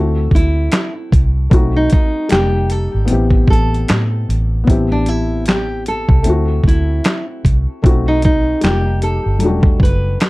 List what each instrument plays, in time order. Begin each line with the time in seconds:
Already playing: fingered electric bass D2, felt piano A3 C4 E4 F#4, nylon-string guitar A4
0.31 fingered electric bass D2, nylon-string guitar E4, kick
0.36 closed hi-hat
0.72 finger snap, snare, clap, closed hi-hat
1.12 fingered electric bass C2, kick, closed hi-hat
1.50 fingered electric bass B1, felt piano A3 C4 D#4 F#4, kick, closed hi-hat
1.76 nylon-string guitar D#4
1.90 nylon-string guitar D#4, kick, closed hi-hat
2.29 fingered electric bass F1, felt piano G3 A#3 D#4 G4, nylon-string guitar G4, finger snap, snare, clap, closed hi-hat
2.70 nylon-string guitar A4, closed hi-hat
2.94 fingered electric bass G#1
3.05 felt piano B3 C4, closed hi-hat
3.10 fingered electric bass A1, felt piano E4 G4
3.31 kick
3.48 fingered electric bass A1, nylon-string guitar A4, kick
3.53 closed hi-hat
3.74 closed hi-hat
3.88 fingered electric bass A2, finger snap, snare, clap, closed hi-hat
4.29 fingered electric bass A1, closed hi-hat
4.64 felt piano B3 C4, kick
4.68 fingered electric bass A1, felt piano E4 G4, closed hi-hat
4.92 nylon-string guitar D4
5.06 nylon-string guitar E4, closed hi-hat
5.46 nylon-string guitar G4, snare, clap, closed hi-hat
5.86 nylon-string guitar A4, closed hi-hat
6.09 fingered electric bass C2, kick
6.22 felt piano A3 C4, closed hi-hat
6.27 fingered electric bass D2, felt piano E4 F#4
6.64 fingered electric bass D2, nylon-string guitar E4, kick
6.69 closed hi-hat
7.04 snare, clap, closed hi-hat
7.45 fingered electric bass C2, kick, closed hi-hat
7.82 fingered electric bass B1, felt piano A3 C4 D#4 F#4, kick, closed hi-hat
8.08 nylon-string guitar D#4
8.22 nylon-string guitar D#4, kick, closed hi-hat
8.61 fingered electric bass F1, felt piano G3 A#3 D#4 F4, nylon-string guitar G4, snare, clap, closed hi-hat
8.71 felt piano G4
9.02 nylon-string guitar A4, closed hi-hat
9.26 fingered electric bass G1
9.38 felt piano F#3 A3, closed hi-hat
9.42 fingered electric bass E1, felt piano G3 D4 F#4
9.63 kick
9.80 fingered electric bass F#1, nylon-string guitar B4, kick
9.85 closed hi-hat
10.20 snare, clap, closed hi-hat